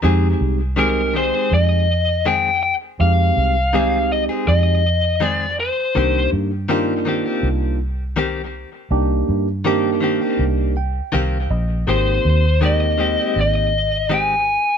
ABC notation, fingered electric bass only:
X:1
M:4/4
L:1/8
Q:"Swing 16ths" 1/4=81
K:Cm
V:1 name="Fingered electric bass" clef=bass
F,, C,,3 F,,4 | F,, C,,3 F,,4 | C,, G,,3 C,,4 | C,, G,,3 C,,2 C,, B,,, |
A,,, E,,3 A,,,4 |]